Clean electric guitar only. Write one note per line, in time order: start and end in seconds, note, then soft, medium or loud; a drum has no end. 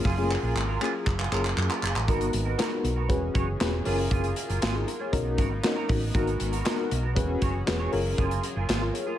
0.04 0.28 A#3 medium
0.04 0.28 F4 medium
0.04 0.29 G#4 loud
0.30 muted clean electric guitar stroke soft
0.42 0.54 A#3 medium
0.42 0.53 F4 medium
0.42 0.53 G#4 medium
0.55 muted clean electric guitar stroke soft
0.68 0.79 A#3 medium
0.68 0.80 F4 medium
0.68 0.81 A#4 medium
0.80 0.91 A#3 medium
0.80 0.91 F4 medium
0.80 0.92 G#4 medium
0.93 muted clean electric guitar stroke soft
1.06 muted clean electric guitar stroke soft
1.18 1.30 A#3 soft
1.18 1.29 F4 soft
1.18 1.29 G#4 medium
1.31 1.45 A#3 medium
1.31 1.44 F4 medium
1.31 1.43 A#4 medium
1.44 muted clean electric guitar stroke soft
1.56 muted clean electric guitar stroke soft
1.69 1.80 A#3 medium
1.69 1.80 F4 medium
1.69 1.80 A#4 medium
1.82 1.95 A#3 medium
1.82 1.95 F4 medium
1.82 1.93 G#4 medium
1.94 muted clean electric guitar stroke soft
2.07 2.31 B3 medium
2.07 2.31 F#4 medium
2.07 2.32 A#4 medium
2.33 muted clean electric guitar stroke soft
2.45 2.57 B3 medium
2.45 2.56 F#4 medium
2.45 2.56 A#4 medium
2.58 2.71 B3 medium
2.58 2.71 F#4 medium
2.58 2.69 A#4 loud
2.71 muted clean electric guitar stroke medium
2.83 muted clean electric guitar stroke soft
2.96 3.08 B3 medium
2.96 3.07 F#4 medium
2.96 3.07 A#4 medium
3.09 muted clean electric guitar stroke soft
3.21 muted clean electric guitar stroke soft
3.34 3.48 F#4 medium
3.34 3.47 G#4 medium
3.34 3.46 C#5 loud
3.47 muted clean electric guitar stroke soft
3.73 muted clean electric guitar stroke soft
3.85 3.99 A#3 medium
3.85 3.98 F4 medium
3.85 3.97 G#4 medium
3.98 muted clean electric guitar stroke soft
4.10 4.34 A#3 medium
4.10 4.35 F4 medium
4.10 4.35 G#4 loud
4.36 muted clean electric guitar stroke soft
4.49 4.60 A#3 medium
4.49 4.60 F4 medium
4.49 4.59 G#4 medium
4.61 4.75 A#3 medium
4.61 4.74 F4 medium
4.61 4.73 G#4 medium
4.74 muted clean electric guitar stroke medium
4.87 muted clean electric guitar stroke soft
5.00 5.11 A#3 medium
5.00 5.11 F4 medium
5.00 5.10 G#4 medium
5.13 muted clean electric guitar stroke soft
5.25 muted clean electric guitar stroke soft
5.37 5.51 D#4 medium
5.37 5.50 F#4 medium
5.37 5.49 A#4 medium
5.50 muted clean electric guitar stroke medium
5.63 muted clean electric guitar stroke soft
5.76 5.87 D#4 medium
5.76 5.88 F#4 medium
5.76 5.89 A#4 medium
5.88 muted clean electric guitar stroke soft
6.02 muted clean electric guitar stroke soft
6.14 6.38 B3 medium
6.14 6.38 F#4 medium
6.14 6.39 A#4 medium
6.40 muted clean electric guitar stroke soft
6.52 6.63 B3 medium
6.52 6.63 F#4 medium
6.52 6.63 A#4 medium
6.64 6.78 B3 medium
6.64 6.77 F#4 medium
6.64 6.76 A#4 medium
6.78 muted clean electric guitar stroke medium
6.90 muted clean electric guitar stroke medium
7.03 7.15 B3 medium
7.03 7.14 F#4 medium
7.03 7.14 A#4 medium
7.16 muted clean electric guitar stroke soft
7.29 muted clean electric guitar stroke soft
7.41 7.55 F#4 medium
7.41 7.54 G#4 medium
7.41 7.53 C#5 medium
7.54 muted clean electric guitar stroke soft
7.67 muted clean electric guitar stroke soft
7.79 7.93 F#4 medium
7.79 7.92 G#4 medium
7.79 7.93 C#5 medium
7.92 muted clean electric guitar stroke soft
8.05 muted clean electric guitar stroke medium
8.17 8.41 A#3 medium
8.17 8.42 F4 medium
8.17 8.42 G#4 loud
8.43 muted clean electric guitar stroke soft
8.56 8.67 A#3 medium
8.56 8.67 F4 medium
8.56 8.66 G#4 medium
8.68 8.82 A#3 medium
8.68 8.81 F4 medium
8.68 8.80 G#4 medium
8.82 muted clean electric guitar stroke soft
8.94 muted clean electric guitar stroke soft
9.07 9.18 A#3 medium
9.07 9.18 F4 medium
9.07 9.17 G#4 medium